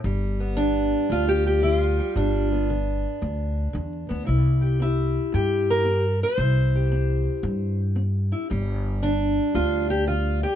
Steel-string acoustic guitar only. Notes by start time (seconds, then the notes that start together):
0.04 G2 G3
0.40 B3
0.57 D3 D4
1.11 D2 F4
1.28 G4
1.47 G4
1.63 D3 E4
1.76 F4
1.99 G3
2.16 G2 D4
2.52 B3
2.70 D3
3.22 D2
3.73 D3
4.09 B3
4.25 C3 E4
4.61 G4
4.80 C4 E4
5.32 G2 G4
5.70 A#4
5.85 C4
6.23 C5
6.39 C3 E4
6.75 G4
6.92 C4
7.43 G2
7.96 C4
8.32 E4
8.50 G2 G3
9.02 D3 D4
9.55 D2 F4
9.90 G4
10.07 D3 F4
10.43 G4